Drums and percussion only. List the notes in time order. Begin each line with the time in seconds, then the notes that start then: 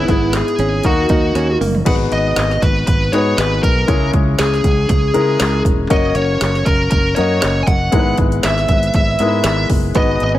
0.08 kick, closed hi-hat
0.33 snare, clap, closed hi-hat
0.48 closed hi-hat
0.59 closed hi-hat
0.83 kick, closed hi-hat
1.09 kick, closed hi-hat
1.35 snare, closed hi-hat
1.50 high tom
1.61 mid tom, open hi-hat
1.75 floor tom
1.86 kick, closed hi-hat, crash
2.12 closed hi-hat
2.36 snare, clap, closed hi-hat
2.51 snare
2.62 kick, closed hi-hat
2.87 kick, closed hi-hat
3.13 closed hi-hat
3.38 snare, clap, closed hi-hat
3.63 kick, closed hi-hat
3.88 kick, closed hi-hat
4.13 kick, closed hi-hat
4.39 snare, clap, closed hi-hat
4.54 snare
4.64 kick, closed hi-hat
4.89 kick, closed hi-hat
5.14 closed hi-hat
5.40 snare, clap, closed hi-hat
5.65 kick, closed hi-hat
5.90 kick, closed hi-hat
6.15 closed hi-hat
6.41 snare, clap, closed hi-hat
6.55 snare
6.66 kick, closed hi-hat
6.91 kick, closed hi-hat
7.16 closed hi-hat
7.42 snare, clap, closed hi-hat
7.67 kick, closed hi-hat
7.92 kick, closed hi-hat
8.18 kick, closed hi-hat
8.32 closed hi-hat
8.43 snare, clap, closed hi-hat
8.58 snare
8.69 kick, closed hi-hat
8.83 closed hi-hat
8.94 kick, closed hi-hat
9.19 closed hi-hat
9.44 snare, clap, closed hi-hat
9.70 kick, open hi-hat
9.95 kick, closed hi-hat
10.20 closed hi-hat